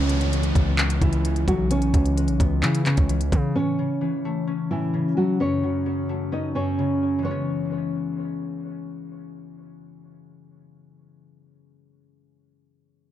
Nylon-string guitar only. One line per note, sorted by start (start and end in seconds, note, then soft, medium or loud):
0.00 0.75 C#4 loud
0.00 0.75 C#5 medium
1.02 1.45 E3 medium
1.02 1.45 E4 medium
1.48 1.68 F#3 medium
1.48 1.68 F#4 medium
1.71 2.59 C#4 loud
1.71 2.59 C#5 medium
2.63 2.83 E3 medium
2.63 2.83 E4 medium
2.86 3.51 C#4 medium
2.86 3.52 C#5 medium
3.56 4.44 C#4 loud
3.56 4.44 C#5 medium
4.71 5.15 E3 medium
4.71 5.14 E4 medium
5.17 5.37 F#3 medium
5.17 5.37 F#4 medium
5.40 6.28 C#4 medium
5.40 6.29 C#5 medium
6.32 6.52 D#4 medium
6.32 6.53 D#5 medium
6.55 7.20 C#4 medium
6.55 7.21 C#5 medium
7.25 8.59 C#5 medium